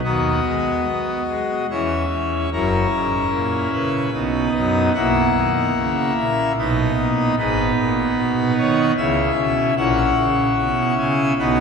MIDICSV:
0, 0, Header, 1, 2, 480
1, 0, Start_track
1, 0, Key_signature, 5, "major"
1, 0, Tempo, 832178
1, 24, Time_signature, 3, 2, 24, 8
1, 984, Tempo, 813008
1, 3384, Tempo, 802139
1, 6873, End_track
2, 0, Start_track
2, 0, Title_t, "Pipe organ"
2, 0, Program_c, 0, 19
2, 21, Note_on_c, 0, 66, 49
2, 22, Note_on_c, 0, 59, 49
2, 23, Note_on_c, 0, 51, 68
2, 24, Note_on_c, 0, 39, 75
2, 24, Note_on_c, 0, 75, 97
2, 229, Note_off_c, 0, 51, 0
2, 230, Note_off_c, 0, 39, 0
2, 265, Note_on_c, 0, 56, 64
2, 470, Note_off_c, 0, 56, 0
2, 493, Note_off_c, 0, 59, 0
2, 504, Note_on_c, 0, 59, 62
2, 708, Note_off_c, 0, 59, 0
2, 744, Note_on_c, 0, 56, 60
2, 946, Note_off_c, 0, 56, 0
2, 958, Note_off_c, 0, 66, 0
2, 960, Note_off_c, 0, 75, 0
2, 983, Note_on_c, 0, 64, 41
2, 984, Note_on_c, 0, 40, 56
2, 984, Note_on_c, 0, 61, 44
2, 984, Note_on_c, 0, 73, 92
2, 986, Note_on_c, 0, 52, 58
2, 1189, Note_off_c, 0, 40, 0
2, 1189, Note_off_c, 0, 52, 0
2, 1226, Note_on_c, 0, 40, 55
2, 1429, Note_off_c, 0, 40, 0
2, 1450, Note_off_c, 0, 64, 0
2, 1451, Note_off_c, 0, 61, 0
2, 1451, Note_off_c, 0, 73, 0
2, 1466, Note_on_c, 0, 42, 65
2, 1467, Note_on_c, 0, 30, 71
2, 1467, Note_on_c, 0, 61, 51
2, 1467, Note_on_c, 0, 64, 49
2, 1467, Note_on_c, 0, 70, 105
2, 1669, Note_off_c, 0, 42, 0
2, 1670, Note_off_c, 0, 30, 0
2, 1703, Note_on_c, 0, 44, 69
2, 1907, Note_off_c, 0, 44, 0
2, 1941, Note_on_c, 0, 46, 65
2, 2144, Note_off_c, 0, 46, 0
2, 2162, Note_off_c, 0, 70, 0
2, 2181, Note_on_c, 0, 71, 95
2, 2182, Note_on_c, 0, 49, 61
2, 2385, Note_off_c, 0, 49, 0
2, 2398, Note_off_c, 0, 61, 0
2, 2398, Note_off_c, 0, 64, 0
2, 2417, Note_on_c, 0, 47, 65
2, 2417, Note_on_c, 0, 63, 48
2, 2418, Note_on_c, 0, 35, 61
2, 2418, Note_on_c, 0, 59, 43
2, 2622, Note_off_c, 0, 47, 0
2, 2623, Note_off_c, 0, 35, 0
2, 2645, Note_off_c, 0, 71, 0
2, 2661, Note_on_c, 0, 42, 68
2, 2661, Note_on_c, 0, 75, 100
2, 2865, Note_off_c, 0, 42, 0
2, 2865, Note_off_c, 0, 75, 0
2, 2885, Note_off_c, 0, 59, 0
2, 2885, Note_off_c, 0, 63, 0
2, 2895, Note_on_c, 0, 78, 123
2, 2896, Note_on_c, 0, 47, 73
2, 2896, Note_on_c, 0, 58, 53
2, 2896, Note_on_c, 0, 64, 53
2, 2898, Note_on_c, 0, 35, 80
2, 3102, Note_off_c, 0, 47, 0
2, 3104, Note_off_c, 0, 35, 0
2, 3143, Note_on_c, 0, 51, 73
2, 3347, Note_off_c, 0, 51, 0
2, 3385, Note_on_c, 0, 49, 71
2, 3590, Note_off_c, 0, 49, 0
2, 3599, Note_off_c, 0, 78, 0
2, 3626, Note_on_c, 0, 76, 112
2, 3628, Note_on_c, 0, 46, 70
2, 3830, Note_off_c, 0, 76, 0
2, 3831, Note_off_c, 0, 46, 0
2, 3839, Note_off_c, 0, 58, 0
2, 3839, Note_off_c, 0, 64, 0
2, 3869, Note_on_c, 0, 35, 74
2, 3869, Note_on_c, 0, 47, 65
2, 3869, Note_on_c, 0, 75, 113
2, 3870, Note_on_c, 0, 59, 53
2, 3871, Note_on_c, 0, 63, 52
2, 4070, Note_off_c, 0, 35, 0
2, 4070, Note_off_c, 0, 47, 0
2, 4113, Note_on_c, 0, 46, 70
2, 4312, Note_off_c, 0, 46, 0
2, 4330, Note_off_c, 0, 59, 0
2, 4330, Note_off_c, 0, 75, 0
2, 4331, Note_off_c, 0, 63, 0
2, 4343, Note_on_c, 0, 32, 77
2, 4344, Note_on_c, 0, 63, 59
2, 4345, Note_on_c, 0, 44, 85
2, 4345, Note_on_c, 0, 71, 123
2, 4346, Note_on_c, 0, 59, 55
2, 4545, Note_off_c, 0, 32, 0
2, 4546, Note_off_c, 0, 44, 0
2, 4588, Note_on_c, 0, 46, 79
2, 4788, Note_off_c, 0, 46, 0
2, 4821, Note_on_c, 0, 47, 73
2, 5024, Note_off_c, 0, 47, 0
2, 5040, Note_off_c, 0, 71, 0
2, 5064, Note_on_c, 0, 51, 74
2, 5064, Note_on_c, 0, 73, 123
2, 5265, Note_off_c, 0, 51, 0
2, 5265, Note_off_c, 0, 73, 0
2, 5276, Note_off_c, 0, 59, 0
2, 5276, Note_off_c, 0, 63, 0
2, 5298, Note_on_c, 0, 49, 72
2, 5300, Note_on_c, 0, 61, 52
2, 5300, Note_on_c, 0, 64, 54
2, 5300, Note_on_c, 0, 76, 112
2, 5302, Note_on_c, 0, 37, 73
2, 5501, Note_off_c, 0, 49, 0
2, 5503, Note_off_c, 0, 37, 0
2, 5536, Note_on_c, 0, 47, 73
2, 5740, Note_off_c, 0, 47, 0
2, 5762, Note_off_c, 0, 76, 0
2, 5763, Note_off_c, 0, 61, 0
2, 5763, Note_off_c, 0, 64, 0
2, 5775, Note_on_c, 0, 64, 66
2, 5776, Note_on_c, 0, 61, 64
2, 5776, Note_on_c, 0, 78, 127
2, 5777, Note_on_c, 0, 34, 94
2, 5777, Note_on_c, 0, 46, 93
2, 5982, Note_off_c, 0, 34, 0
2, 5982, Note_off_c, 0, 46, 0
2, 6018, Note_on_c, 0, 49, 80
2, 6224, Note_off_c, 0, 49, 0
2, 6263, Note_on_c, 0, 47, 72
2, 6467, Note_off_c, 0, 47, 0
2, 6480, Note_off_c, 0, 78, 0
2, 6504, Note_on_c, 0, 80, 124
2, 6505, Note_on_c, 0, 49, 75
2, 6707, Note_off_c, 0, 49, 0
2, 6707, Note_off_c, 0, 80, 0
2, 6717, Note_off_c, 0, 64, 0
2, 6718, Note_off_c, 0, 61, 0
2, 6746, Note_on_c, 0, 59, 59
2, 6747, Note_on_c, 0, 63, 51
2, 6747, Note_on_c, 0, 78, 119
2, 6748, Note_on_c, 0, 35, 72
2, 6749, Note_on_c, 0, 47, 73
2, 6873, Note_off_c, 0, 35, 0
2, 6873, Note_off_c, 0, 47, 0
2, 6873, Note_off_c, 0, 59, 0
2, 6873, Note_off_c, 0, 63, 0
2, 6873, Note_off_c, 0, 78, 0
2, 6873, End_track
0, 0, End_of_file